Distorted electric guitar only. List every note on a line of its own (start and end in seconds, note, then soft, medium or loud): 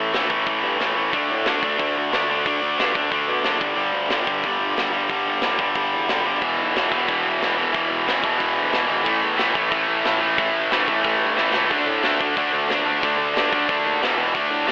0.00 0.12 A2 medium
0.00 0.12 E3 medium
0.00 0.13 A3 medium
0.13 0.29 A2 medium
0.13 0.29 E3 medium
0.13 0.29 A3 medium
0.29 0.45 A2 medium
0.29 0.46 E3 medium
0.29 0.47 A3 medium
0.46 0.78 A2 medium
0.46 0.79 E3 medium
0.46 0.80 A3 loud
0.80 0.97 A2 medium
0.80 0.96 E3 medium
0.80 0.96 A3 medium
0.96 1.12 A2 medium
0.96 1.13 E3 medium
0.96 1.13 A3 medium
1.12 1.46 D3 medium
1.12 1.47 A3 medium
1.12 1.47 D4 medium
1.47 1.64 D3 medium
1.47 1.63 A3 medium
1.47 1.63 D4 medium
1.64 1.77 D3 medium
1.64 1.79 A3 medium
1.64 1.79 D4 medium
1.78 2.11 D3 medium
1.78 2.11 A3 medium
1.78 2.13 D4 medium
2.13 2.28 D3 medium
2.13 2.29 A3 medium
2.13 2.28 D4 medium
2.29 2.46 D3 medium
2.29 2.46 A3 medium
2.29 2.46 D4 medium
2.47 2.78 D3 medium
2.47 2.79 A3 medium
2.47 2.79 D4 medium
2.79 2.95 D3 medium
2.79 2.94 A3 medium
2.79 2.95 D4 medium
2.96 3.10 D3 medium
2.96 3.11 A3 medium
2.96 3.12 D4 medium
3.11 3.43 D3 medium
3.11 3.44 A3 medium
3.11 3.45 D4 medium
3.45 3.59 D3 medium
3.45 3.60 A3 medium
3.45 6.46 D4 medium
3.60 3.77 G2 medium
3.60 3.75 D3 medium
3.60 3.75 G3 medium
3.76 4.10 G2 medium
3.76 4.08 D3 medium
3.76 4.09 G3 medium
4.09 4.26 G2 medium
4.09 4.26 D3 medium
4.09 4.27 G3 medium
4.26 4.43 G2 medium
4.26 4.43 D3 medium
4.26 4.43 G3 medium
4.43 4.76 G2 medium
4.43 4.76 D3 medium
4.43 4.75 G3 medium
4.76 4.91 G2 medium
4.76 4.91 D3 medium
4.76 4.92 G3 medium
4.92 5.09 G2 medium
4.92 5.08 D3 medium
4.92 5.09 G3 medium
5.09 5.43 G2 medium
5.09 5.43 D3 medium
5.09 5.42 G3 medium
5.43 5.59 G2 medium
5.43 5.59 D3 medium
5.43 5.60 G3 medium
5.60 5.75 G2 medium
5.60 5.76 D3 medium
5.60 5.75 G3 medium
5.76 6.09 G2 medium
5.76 6.08 D3 medium
5.76 6.09 G3 medium
6.09 6.24 G2 medium
6.09 6.24 D3 medium
6.09 6.27 G3 medium
6.25 6.41 G2 medium
6.25 6.41 D3 medium
6.25 6.43 G3 medium
6.43 6.75 E2 medium
6.43 6.74 B2 medium
6.43 6.75 E3 medium
6.75 6.92 E2 medium
6.75 6.92 B2 medium
6.75 6.92 E3 medium
6.92 7.06 E2 medium
6.92 7.07 B2 medium
6.92 7.09 E3 medium
7.07 7.40 E2 medium
7.07 7.40 B2 medium
7.07 7.41 E3 medium
7.41 7.57 E2 medium
7.41 7.57 B2 medium
7.41 7.57 E3 medium
7.57 7.73 E2 medium
7.57 7.73 B2 medium
7.57 7.73 E3 medium
7.74 8.05 E2 medium
7.74 8.05 B2 loud
7.74 8.06 E3 medium
8.06 8.23 E2 medium
8.06 8.23 B2 medium
8.06 8.23 E3 medium
8.23 8.37 E2 medium
8.23 8.39 B2 medium
8.23 8.40 E3 medium
8.39 8.71 E2 medium
8.39 8.72 B2 medium
8.39 8.72 E3 medium
8.72 8.88 E2 medium
8.72 8.87 B2 medium
8.72 8.87 E3 medium
8.88 9.05 E2 medium
8.88 9.04 B2 medium
8.88 9.04 E3 medium
9.04 9.37 A2 medium
9.04 9.37 E3 loud
9.04 9.38 A3 loud
9.37 9.54 A2 medium
9.37 9.54 E3 medium
9.37 9.53 A3 medium
9.54 9.69 A2 medium
9.54 9.70 E3 medium
9.54 9.71 A3 medium
9.70 10.02 A2 medium
9.70 10.03 E3 medium
9.70 10.04 A3 medium
10.04 10.20 A2 medium
10.04 10.20 E3 medium
10.04 10.20 A3 medium
10.21 10.36 A2 medium
10.21 10.36 E3 medium
10.21 10.38 A3 medium
10.37 10.70 A2 medium
10.37 10.71 E3 medium
10.37 10.72 A3 loud
10.71 10.87 A2 medium
10.71 10.87 E3 medium
10.71 10.88 A3 medium
10.88 11.03 A2 medium
10.88 11.04 E3 medium
10.88 11.06 A3 medium
11.05 11.35 A2 medium
11.05 11.36 E3 medium
11.05 11.37 A3 medium
11.37 11.53 A2 medium
11.37 11.53 E3 medium
11.37 11.54 A3 medium
11.54 11.70 A2 medium
11.54 11.70 E3 medium
11.54 11.71 A3 medium
11.70 12.03 D3 medium
11.70 12.04 A3 medium
11.70 12.04 D4 loud
12.04 12.20 D3 medium
12.04 12.20 A3 medium
12.04 12.20 D4 medium
12.21 12.36 D3 medium
12.21 12.36 A3 medium
12.21 12.37 D4 medium
12.37 12.69 D3 medium
12.37 12.70 A3 loud
12.37 12.71 D4 medium
12.71 12.87 D3 medium
12.71 12.87 A3 medium
12.71 12.86 D4 medium
12.87 13.02 D3 medium
12.87 13.04 A3 medium
12.87 13.04 D4 medium
13.03 13.35 D3 medium
13.03 13.36 A3 medium
13.03 13.36 D4 loud
13.36 13.52 D3 medium
13.36 13.52 A3 medium
13.36 13.51 D4 medium
13.52 13.67 D3 medium
13.52 13.68 A3 medium
13.52 13.68 D4 medium
13.69 14.01 D3 medium
13.69 14.01 A3 medium
13.69 14.01 D4 medium
14.02 14.17 E2 medium
14.02 14.17 B2 medium
14.02 14.16 E3 medium
14.17 14.34 E2 medium
14.17 14.34 B2 medium
14.17 14.33 E3 medium
14.35 14.65 D3 medium
14.35 14.66 A3 loud
14.35 14.67 D4 loud
14.66 14.72 D3 medium
14.66 14.72 A3 medium
14.66 14.72 D4 medium